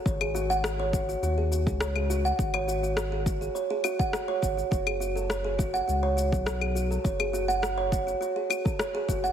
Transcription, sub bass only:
X:1
M:4/4
L:1/16
Q:1/4=103
K:F#dor
V:1 name="Sub bass" clef=bass
G,,,8 D,,3 C,,4- C,, | G,,,8 z6 G,,, z | F,,,8 C,,3 B,,,4- B,,, | F,,,8 z6 F,,, z |]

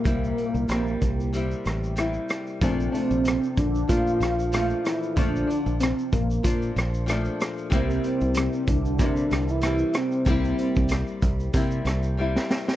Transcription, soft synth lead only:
X:1
M:4/4
L:1/16
Q:"Swing 16ths" 1/4=94
K:Bblyd
V:1 name="Soft synth lead"
B,12- B,2 z2 | C6 D2 F4 F2 E2 | D4 C2 B,4 z6 | C6 D4- D E3 C2- |
C6 z8 z2 |]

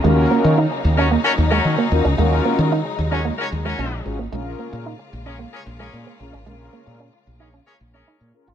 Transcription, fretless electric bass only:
X:1
M:4/4
L:1/16
Q:1/4=112
K:Ebm
V:1 name="Fretless electric bass" clef=bass
E,,2 z E,2 z E,,3 z E,,2 E, z E,, D,, | E,,2 z E,2 z E,,3 z E,,2 B,,,2 A,,,2 | B,,,2 z B,,2 z B,,,3 z B,,,2 B,, z B,,, A,,, | B,,,2 z B,,2 z B,,,3 z B,,,2 z B,, z A,,, |]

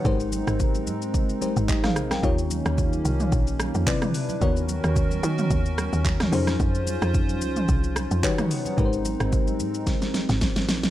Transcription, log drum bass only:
X:1
M:4/4
L:1/16
Q:"Swing 16ths" 1/4=110
K:Ab
V:1 name="Log drum bass" clef=bass
A,,,3 A,,,3 A,,2 A,,,3 A,,,3 B,,,2 | E,,3 E,,3 C,,2 B,,,3 F,, z4 | ^D,,3 D,,3 ^D,2 D,,3 D,,3 F,,2 | F,,3 F,,3 D,,2 C,,3 F,, z4 |
A,,,3 A,,,3 A,,2 A,,,3 A,,,3 B,,,2 |]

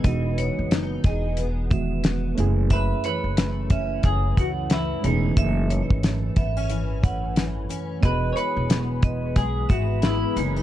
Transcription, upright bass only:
X:1
M:4/4
L:1/16
Q:"Swing 16ths" 1/4=90
K:E
V:1 name="Upright bass" clef=bass
E,,,3 F,,,3 E,,,8 F,,,2- | F,,,2 z F,,,4- F,,, F,,,2 C,,4 E,,,2 | F,,,3 G,,,3 G,,,8 z2 | E,,,2 z E,,,4- E,,, B,,,2 G,,,4 F,,,2 |]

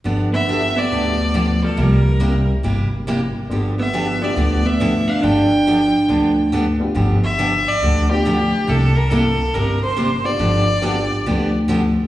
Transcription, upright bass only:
X:1
M:4/4
L:1/8
Q:"Swing" 1/4=139
K:Gmix
V:1 name="Upright bass" clef=bass
G,,,4 D,,4 | C,,4 G,,,4 | G,,,4 D,,4 | G,,,4 D,,4 |
G,,,4 D,,4 | C,,4 G,,,4 | G,,,4 D,,4 |]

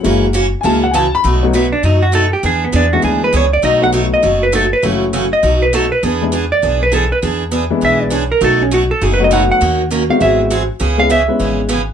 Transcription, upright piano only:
X:1
M:4/4
L:1/8
Q:"Swing" 1/4=201
K:B
V:1 name="Upright piano"
f2 z2 [g=a] f [ga] b | z [F,=A,B,DF] z6 | z3 [E,G,B,=DE]3 z2 | z [F,=A,B,DF]3 z4 |
[F,=A,CEF]3 z4 z | z [E,G,B,=DE] z6 | z3 [E,G,B,=DE]3 z2 | z4 z [F,=A,B,DF]3 |
z3 [G,B,=CEF]3 z2 | z [G,B,CEG] z [G,B,CEB]3 z2 |]
V:2 name="Upright piano"
[G,A,E] z3 [G,A,E] z3 | z8 | z8 | z8 |
z8 | z8 | z8 | z8 |
z8 | z8 |]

